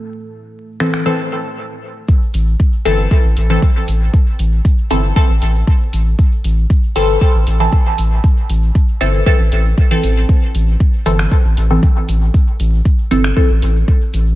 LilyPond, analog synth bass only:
\new Staff \with { instrumentName = "Analog synth bass" } { \clef bass \time 4/4 \key a \minor \tempo 4 = 117 r1 | r8 a,,8 r8 g,,8 r16 a,,16 a,,8 r8 a,,8 | r8 a,,8 r8 g,,8 r16 a,,16 a,,8 r8 a,,8 | r8 a,,8 r8 g,,8 r16 a,,16 a,,8 r8 a,,8 |
r8 a,,8 r8 g,,8 r16 a,,16 a,,8 r8 a,,8 | r8 a,,8 r8 g,,8 r16 a,,16 a,,8 r8 a,,8 | r8 a,,8 r8 g,,8 r16 a,,16 a,,8 r8 a,,8 | }